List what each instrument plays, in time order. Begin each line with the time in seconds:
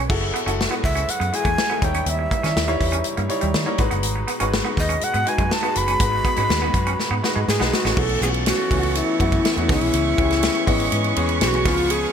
Already playing: grand piano G#3 D#4 F#4 B4
0.09 fingered electric bass F#1, string section A2 E3 F#3, grand piano E4 F#4 G#4 A4, kick, crash
0.21 muted clean electric guitar stroke
0.34 clean electric guitar B3, closed hi-hat
0.46 fingered electric bass F#1, grand piano G#3 E4 F#4 A4, clean electric guitar C#4, closed hi-hat
0.61 snare
0.70 grand piano G#3 E4 F#4 B4, clean electric guitar B3, closed hi-hat
0.84 fingered electric bass C#2, recorder E5, muted clean electric guitar stroke, kick, open hi-hat
0.95 clean electric guitar C#4, closed hi-hat
1.08 recorder F#5, muted fingered electric bass stroke, closed hi-hat
1.20 fingered electric bass F#2, clean electric guitar B3, closed hi-hat
1.33 grand piano G#3 E4 F#4 G#4, recorder G#5, muted clean electric guitar stroke, closed hi-hat
1.45 fingered electric bass E2, clean electric guitar A3, kick, closed hi-hat
1.58 snare
1.69 grand piano G#3 E4 F#4 A4, clean electric guitar B3
1.82 fingered electric bass D#2, string section C#3 G3, grand piano G3 D#4 E4 C#5, recorder G5, muted clean electric guitar stroke, kick, closed hi-hat
1.94 clean electric guitar C#4, closed hi-hat
2.06 fingered electric bass D#2, recorder E5, closed hi-hat
2.19 muted clean electric guitar stroke
2.31 clean electric guitar A#3, kick, closed hi-hat
2.43 fingered electric bass D#3, grand piano G3 D#4 E4 C#5, clean electric guitar C#4, snare, closed hi-hat
2.56 fingered electric bass D#2, snare
2.67 grand piano G3 D#4 E4 C#5, clean electric guitar A#3, closed hi-hat
2.80 fingered electric bass E2, muted clean electric guitar stroke, kick, open hi-hat
2.92 clean electric guitar C#4, closed hi-hat
3.04 closed hi-hat
3.17 fingered electric bass G2, clean electric guitar A#3, closed hi-hat
3.29 grand piano G3 D#4 E4 C#5, muted clean electric guitar stroke, closed hi-hat
3.41 fingered electric bass D#2, clean electric guitar G3, closed hi-hat
3.54 fingered electric bass D#3, snare
3.66 grand piano G3 D#4 E4 C#5, clean electric guitar A#3
3.78 fingered electric bass G#1, string section B2 G#3 F#4, grand piano G#3 D#4 F#4 B4, muted clean electric guitar stroke, kick, closed hi-hat
3.91 fingered electric bass F#1, clean electric guitar B3, closed hi-hat
4.03 fingered electric bass G#1, closed hi-hat
4.16 muted clean electric guitar stroke
4.28 clean electric guitar B3, closed hi-hat
4.40 fingered electric bass G#1, grand piano G#3 D#4 F#4 B4, clean electric guitar C#4, closed hi-hat
4.54 snare
4.64 grand piano G#3 D#4 F#4 B4, clean electric guitar B3
4.77 fingered electric bass D#2, recorder D#5, muted clean electric guitar stroke, kick, open hi-hat
4.89 clean electric guitar C#4, closed hi-hat
5.01 recorder F#5, muted fingered electric bass stroke, closed hi-hat
5.14 fingered electric bass G#2, clean electric guitar B3, closed hi-hat
5.26 grand piano G#3 D#4 F#4 B4, recorder G#5, muted clean electric guitar stroke, closed hi-hat
5.38 fingered electric bass F#2, clean electric guitar G#3, kick, closed hi-hat
5.51 recorder A5, snare
5.62 grand piano G#3 D#4 F#4 B4, clean electric guitar B3, closed hi-hat
5.76 fingered electric bass F#1, recorder B5, muted clean electric guitar stroke, closed hi-hat
5.88 clean electric guitar C#4, closed hi-hat
5.99 fingered electric bass G#1, grand piano G#3 D#4 F#4 B4, kick, closed hi-hat
6.12 muted clean electric guitar stroke
6.25 clean electric guitar B3, kick, closed hi-hat
6.36 fingered electric bass G#2, grand piano G#3 D#4 F#4 B4, clean electric guitar C#4, closed hi-hat
6.50 fingered electric bass D#2, snare
6.61 grand piano G#3 D#4 F#4 B4, clean electric guitar B3
6.74 fingered electric bass F#2, muted clean electric guitar stroke, kick, closed hi-hat
6.87 clean electric guitar C#4, closed hi-hat
7.00 snare
7.11 fingered electric bass G#2, clean electric guitar B3
7.22 grand piano G#3 D#4 F#4 B4, muted clean electric guitar stroke, snare
7.36 fingered electric bass G#2, clean electric guitar G#3
7.48 fingered electric bass G#2, recorder G#4, snare
7.59 fingered electric bass B1, grand piano G#3 D#4 F#4 B4, clean electric guitar B3, snare
7.73 recorder F#4, muted clean electric guitar stroke, snare
7.85 fingered electric bass A1, clean electric guitar C#4, snare
7.97 fingered electric bass B1, grand piano E3 A3 B3 C#4 F#4, string section E4 A4 C#6, recorder A4, kick, crash
8.09 ride
8.21 fingered electric bass B1, grand piano E3 A3 B3 C#4 F4, recorder G#4, ride
8.29 grand piano F#4
8.34 ride
8.46 recorder F#4, snare, ride
8.71 fingered electric bass C#2, grand piano E3 A3 B3 C#4 F4, kick, open hi-hat, ride
8.78 grand piano F#4
8.83 ride
8.95 recorder E4, hi-hat pedal, ride
9.20 fingered electric bass F#2, grand piano E3 A3 B3 C#4 F#4, kick, ride
9.32 kick, ride
9.45 snare, ride
9.56 fingered electric bass E2, grand piano E3 A3 B3 C#4 F#4, ride
9.68 fingered electric bass C#2, grand piano E3 G#3 B3 C#4 G#4, recorder E4, string section B4, kick, snare, open hi-hat, ride
9.81 fingered electric bass B1, ride
9.94 fingered electric bass C#2, hi-hat pedal, ride
10.17 fingered electric bass C#2, grand piano E3 G#3 B3 C#4 G4, kick, ride
10.24 grand piano G#4
10.30 snare, ride
10.43 snare, ride
10.55 ride
10.67 fingered electric bass G#1, grand piano E3 G#3 B3 C#4 D#5, kick, open hi-hat, ride
10.80 ride
10.92 fingered electric bass G#2, hi-hat pedal, ride
11.04 ride
11.16 fingered electric bass E2, grand piano E3 G#3 B3 C#4 G#4, ride
11.29 ride
11.41 fingered electric bass B1, recorder G4, snare, ride
11.48 recorder F#4
11.54 grand piano E3 G#3 B3 C#4 G#4, ride
11.65 fingered electric bass C#2, grand piano F3 G#3 B3 C#4 G#4, recorder F4, string section F5, kick, snare, open hi-hat, ride
11.78 ride
11.90 recorder G#4, hi-hat pedal, ride